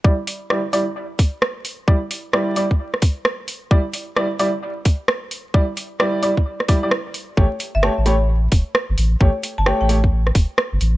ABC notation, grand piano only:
X:1
M:4/4
L:1/16
Q:"Swing 16ths" 1/4=131
K:Edor
V:1 name="Grand piano"
[G,Ed] z3 [G,Ed] z [G,Ed] z8 z | [G,Ed] z3 [G,Ed]2 [G,Ed] z8 z | [G,Ed] z3 [G,Ed] z [G,Ed] z8 z | [G,Ed] z3 [G,Ed]2 [G,Ed] z3 [G,Ed] [G,Ed] z4 |
[A,Gc] z3 [A,Gc] z [A,Gc] z8 z | [A,Gc] z3 [A,Gc]2 [A,Gc] z8 z |]